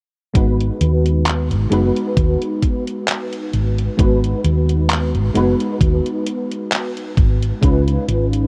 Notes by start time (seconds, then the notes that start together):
0.34 G#1 G#3 B3 D#4 F#4 B4, kick, closed hi-hat
0.60 closed hi-hat
0.81 D#2, closed hi-hat
1.06 closed hi-hat
1.26 clap, closed hi-hat
1.51 G#1, closed hi-hat
1.70 F#1 G#3 B3 D#4 F#4 B4, closed hi-hat
1.96 closed hi-hat
2.17 D#2, kick, closed hi-hat
2.42 closed hi-hat
2.62 kick, closed hi-hat
2.87 closed hi-hat
3.08 clap, closed hi-hat
3.33 closed hi-hat
3.53 G#1, closed hi-hat
3.78 closed hi-hat
3.97 G#1 G#3 B3 D#4 F#4 B4, kick, closed hi-hat
4.24 closed hi-hat
4.44 D#2, closed hi-hat
4.69 closed hi-hat
4.90 clap, closed hi-hat
5.14 G#1, closed hi-hat
5.34 F#1 G#3 B3 D#4 F#4 B4, closed hi-hat
5.60 closed hi-hat
5.81 D#2, kick, closed hi-hat
6.06 closed hi-hat
6.26 closed hi-hat
6.52 closed hi-hat
6.72 clap, closed hi-hat
6.97 closed hi-hat
7.17 G#1, kick, closed hi-hat
7.42 closed hi-hat
7.61 C#2 G#3 C#4 D#4 F4 B4, kick, closed hi-hat
7.88 closed hi-hat
8.08 G#1, closed hi-hat
8.33 closed hi-hat